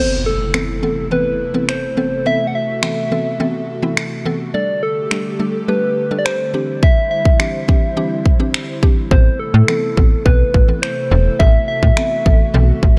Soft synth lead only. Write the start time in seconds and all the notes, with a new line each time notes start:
Already playing: C5
0.26 A4
1.12 B4
1.69 C5
2.27 E5
2.47 F#5
2.55 E5
4.54 D5
4.83 A4
5.68 B4
6.19 D5
6.25 C5
6.83 E5
7.11 E5
9.11 C5
9.39 A4
10.25 B4
10.82 C5
11.39 E5
11.68 E5